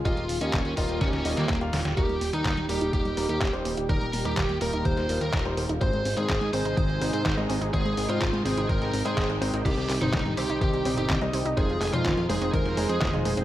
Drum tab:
CC |----------------|----------------|----------------|----------------|
HH |xxoxxxoxxxoxxxox|xxoxxxoxxxoxxxox|xxoxxxoxxxoxxxox|xxoxxxoxxxoxxxox|
CP |----x-------x---|----x-------x---|----x-------x---|----x-------x---|
SD |----o---oo-oo-oo|----o-------o---|----o----o--o---|----o-------o---|
T1 |----------------|---o------o-----|---o---------o--|---o------o-----|
BD |o---o-o-o---o---|o---o---o---o---|o---o---o---o---|o---o---o---o---|

CC |----------------|x---------------|----------------|
HH |xxoxxxoxxxoxxxox|xxoxxxoxxxoxxxox|xxoxxxoxxxoxxxox|
CP |----x-------x---|--x-x-------x---|--x-x-------x---|
SD |----o----o--o---|----o-------o---|----o----o--o---|
T1 |---o---------o--|---o------o-----|---o---------o--|
BD |o---o---o---o---|o---o---o---o---|o---o---o---o---|